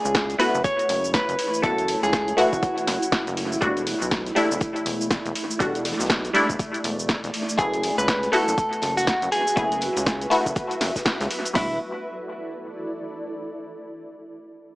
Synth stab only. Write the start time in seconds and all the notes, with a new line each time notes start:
Already playing: A3 B3 E4 G#4
0.38 A3 B3 E4 F#4
1.62 A3 B3 E4 F#4
2.37 A3 B3 E4 F#4
3.61 G3 A3 D4 F#4
4.35 G3 A3 D4 E4
5.59 G3 A3 D4 F#4
6.33 G3 A3 D4 E4
7.57 A3 B3 E4 G#4
8.32 A3 B3 E4 F#4
9.56 A3 B3 E4 G#4
10.30 A3 B3 E4 F#4
11.54 G3 A3 D4 F#4